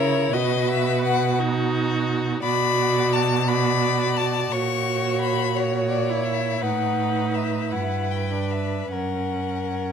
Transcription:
Already playing: cello C#3, viola E4, violin A#4 C#5
0.33 cello B2, viola F#4, violin B4 D#5
0.69 violin E5
1.03 violin F#5
1.39 viola D#4, violin F#4
2.43 cello B2, viola F#4, violin D5 B5
3.13 violin A5
3.48 viola F#4, violin D5 B5
4.17 violin A5
4.52 cello A#2, viola F#4, violin C#5 C#6
5.21 violin B5
5.55 viola F#4, violin C#5
5.89 violin D5
6.09 viola E4
6.25 violin E5
6.61 cello A2, viola D#4, violin B4 F#5
7.34 violin E5
7.71 cello G2, viola E4, violin B4 F#5
8.11 violin G5
8.31 viola D4
8.51 violin E5
8.92 cello F#2, viola C#4, violin A#4 F#5

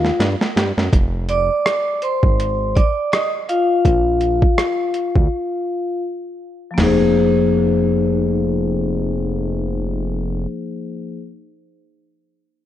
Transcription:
Already playing: analog synth bass D#2, vibraphone F4 F5
0.05 snare
0.19 analog synth bass G2, snare, closed hi-hat
0.41 snare
0.56 analog synth bass G2, snare, closed hi-hat
0.77 analog synth bass F#2, snare
0.93 analog synth bass F1, kick, closed hi-hat
1.29 vibraphone D5 D6, closed hi-hat
1.66 cross-stick, closed hi-hat
2.02 vibraphone C5 C6, closed hi-hat
2.23 analog synth bass G#1, kick
2.40 closed hi-hat
2.75 vibraphone D5 D6, kick, closed hi-hat
3.12 vibraphone D#5 D#6, cross-stick, closed hi-hat
3.49 vibraphone F4 F5, closed hi-hat
3.85 analog synth bass A#1, kick, closed hi-hat
4.21 closed hi-hat
4.42 kick
4.58 cross-stick, closed hi-hat
4.94 closed hi-hat
5.16 analog synth bass D2, kick
6.71 vibraphone F3 A#3
6.77 analog synth bass F1, vibraphone D#4 G#4, snare, floor tom, crash
6.84 vibraphone C5

